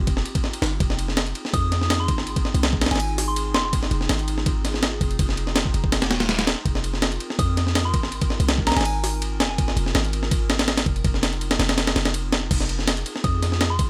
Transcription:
Already playing: F1 C4 D#4 F4 G4
0.07 kick, ride
0.17 snare
0.26 ride
0.35 kick, ride
0.44 snare
0.53 ride
0.62 G1, snare, ride
0.80 F1 G#4, kick, ride
0.90 snare
0.99 ride
1.08 snare
1.17 snare, ride
1.27 ride
1.35 ride
1.45 snare
1.54 F2 D#6, kick, ride
1.72 snare, ride
1.81 snare
1.90 snare, ride
2.00 C6
2.08 G#1, kick, ride
2.18 snare
2.27 ride
2.36 kick, ride
2.45 snare
2.54 C2, ride
2.63 snare, ride
2.73 kick
2.81 snare, ride
2.86 snare, ride
2.91 G#1 G#5, snare, ride
2.96 snare, ride
3.00 ride
3.18 snare, open hi-hat
3.28 C6
3.36 ride
3.54 F1 C6, snare, ride
3.64 C6
3.73 kick, ride
3.83 snare
3.91 F1, ride
4.01 snare
4.09 G#1, snare, ride
4.19 ride
4.28 ride
4.38 snare
4.46 kick, ride
4.65 snare, ride
4.74 snare
4.83 snare, ride
5.01 F1, kick, ride
5.11 ride
5.19 F1, kick, ride
5.29 snare
5.37 ride
5.47 snare
5.56 snare, ride
5.65 kick
5.74 F1, ride
5.84 kick
5.92 snare, ride
6.02 snare, ride
6.11 D#1, snare, ride
6.20 snare, ride
6.29 snare, ride
6.39 snare, ride
6.47 snare, ride
6.65 F1 A#4, kick, ride
6.75 snare
6.84 ride
6.94 snare
7.02 snare, ride
7.12 ride
7.20 ride
7.30 snare
7.39 F2 D#6, kick, ride
7.57 snare, ride
7.67 snare
7.75 snare, ride
7.85 C6
7.94 G#1, kick, ride
8.03 snare
8.12 ride
8.21 kick, ride
8.30 snare
8.40 C2, ride
8.49 snare, ride
8.58 kick
8.67 A#5, snare, ride
8.72 snare, ride
8.76 G#1 G#5, snare, ride
8.81 snare, ride
8.85 G#5, ride
9.04 snare, open hi-hat
9.22 ride
9.40 F1 G#5, snare, ride
9.50 G#5
9.58 kick, ride
9.68 snare
9.77 F1, ride
9.86 snare
9.95 G#1, snare, ride
10.05 ride
10.13 ride
10.23 snare
10.31 kick, ride
10.50 snare, ride
10.59 snare, ride
10.68 snare, ride
10.77 snare, ride
10.86 F1, kick, ride
10.96 ride
11.04 F1, kick, ride
11.14 snare
11.23 snare, ride
11.33 ride
11.41 ride
11.51 snare, ride
11.59 F1, snare, ride
11.69 snare, ride
11.78 snare, ride
11.87 snare, ride
11.96 F1, snare, ride
12.05 snare, ride
12.14 ride
12.32 snare, ride
12.51 F1 C4 D#4 F4 G#4, kick, crash, ride
12.60 snare
12.69 ride
12.79 snare
12.88 snare, ride
12.97 ride
13.06 ride
13.16 snare
13.24 F2 D#6, kick, ride
13.42 snare, ride
13.52 snare
13.61 snare, ride
13.70 C6
13.79 G#1, kick, ride

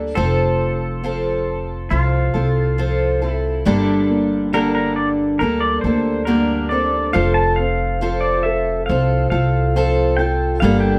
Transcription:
Already playing: D2 G3 A#3 D4 A4
0.15 F1 F3 C4 F4 A4
1.03 F3 C4 F4 A4
1.90 C2 F3 C4 F4 A4
2.34 C2 C4 F4 A4
2.78 F3 C4 F4 A4
3.22 C4 F4 A4
3.27 E4
3.65 G1 G2 D3 G3 A#3 D4 A4
4.10 A#3
4.53 G2 D3 G3 A#3 D4 A4 A#4
4.75 A#4
4.96 D5
5.39 D2 G3 A#3 D4 A4 A#4
5.60 D5
5.81 D2 D4 A4 C5
5.85 G3 A#3 D4
6.25 G2 D3 G3 A#3 D4 A#4
6.69 G3 A#3 C4 D4 A4 D5
6.93 D4
7.13 F1 F3 C4 F4 A4 F5
7.34 A5
7.56 C4 F5
8.01 F3 C4 F4 A4
8.21 D5
8.43 A4 E5
8.86 C2 F3 C4 F5
8.91 F4 A4
9.30 C2 F4 A4 F5
9.34 C4
9.75 F3 C4 F4 A4
10.17 F4 A4 G5
10.21 C4
10.60 G1 G2 D3 G3 A#3 D4 F5
10.64 A4
10.80 G5

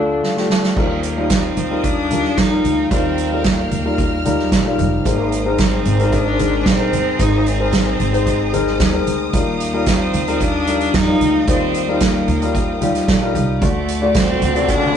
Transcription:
Already playing: D2 D3 A3 D4 F4 A4 D5
0.23 F5, snare
0.36 A3 D4 F4 G4, snare
0.50 A5, snare
0.63 snare
0.77 D#2 D#3 G3 A#3 D#4 F4 A#4 F5 G5 D#6, kick, crash
1.03 closed hi-hat
1.17 G3 D#4 F4 A#4
1.30 C4, kick, snare, closed hi-hat
1.57 D#2, closed hi-hat, floor tom
1.70 G3 D#4 F4 A#4
1.84 D4, kick, closed hi-hat
2.10 G3 D#4 F4 A#4, closed hi-hat, floor tom
2.24 snare
2.37 F2 D#4, kick, snare, closed hi-hat
2.51 G3 D#4 F4 A#4
2.64 D2, closed hi-hat, floor tom
2.91 D#2 D#3 G3 C4 D#4 F4 A#4 F6, kick, closed hi-hat
3.18 closed hi-hat
3.31 G3 D#4 F4 A#4
3.44 A#3, kick, snare, closed hi-hat
3.71 D#2, closed hi-hat, floor tom
3.85 G3 D#4 F4 A#4
3.98 kick, closed hi-hat
4.25 G3 D#4 F4 A#4, closed hi-hat, floor tom
4.39 snare
4.52 A#2, kick, snare, closed hi-hat
4.65 G3 D#4 F4 A#4
4.78 F1, closed hi-hat, floor tom
5.05 G#1 G#2 G#3 A#3 C4 D#4 A#4 C5 G#5 A#5 D#6, kick, closed hi-hat
5.32 closed hi-hat
5.45 G#3 C4 D#4 A#4
5.58 C4, kick, snare, closed hi-hat
5.85 G#1, closed hi-hat, floor tom
5.99 G#3 C4 D#4 A#4, closed hi-hat
6.12 D4, kick, closed hi-hat
6.39 G#3 C4 D#4 A#4, closed hi-hat, floor tom
6.66 A#1 C4, kick, snare, closed hi-hat
6.78 G#3 C4 D#4 A#4
6.93 G1, closed hi-hat, floor tom
7.19 G#1 G#2 G#3 C4 D#4 C5, kick, closed hi-hat
7.46 C4, closed hi-hat
7.59 G#3 C4 D#4 A#4
7.72 kick, snare, closed hi-hat
8.00 G#1, closed hi-hat, floor tom
8.13 G#3 C4 D#4 C5, closed hi-hat
8.26 kick, closed hi-hat
8.53 G#3 C4 D#4 A#4, closed hi-hat, floor tom
8.67 snare
8.80 D#2, kick, snare, closed hi-hat
8.93 G#3 C4 D#4 A#4
9.06 D2, closed hi-hat, floor tom
9.33 D#2 D#3 G3 A#3 D#4 F4 A#4 F5 G5, kick, closed hi-hat
9.60 closed hi-hat
9.73 G3 D#4 F4 A#4
9.86 C4, kick, snare, closed hi-hat
10.14 D#2, closed hi-hat, floor tom
10.27 G3 D#4 F4 A#4, closed hi-hat
10.40 D4, kick, closed hi-hat
10.67 G3 D#4 F4 A#4, closed hi-hat
10.81 closed hi-hat
10.94 F2 D#4, kick, snare, closed hi-hat
11.07 G3 D#4 F4 A#4
11.21 D2, closed hi-hat, floor tom
11.47 D#2 D#3 G3 C4 D#4 F4 C5, kick, closed hi-hat
11.74 closed hi-hat
11.88 G3 D#4 F4 A#4
12.00 A#3, kick, snare, closed hi-hat
12.28 D#2, closed hi-hat, floor tom
12.42 G3 D#4 F4 A#4, closed hi-hat
12.55 kick, closed hi-hat
12.81 G3 D#4 F4 G4, closed hi-hat, floor tom
12.95 snare, closed hi-hat
13.08 A#2, kick, snare, closed hi-hat
13.22 G3 D#4 F4 A#4
13.35 C2, closed hi-hat, floor tom
13.62 D2 D3 A3 D4 F#4 A4 D5 F#5 D6, kick, closed hi-hat, riser
13.88 closed hi-hat
14.01 A3 D4 F#4 D5
14.14 C4, kick, snare, closed hi-hat
14.42 D2, closed hi-hat, floor tom
14.54 A3 D4 F#4 D5, closed hi-hat
14.68 D4, kick, closed hi-hat

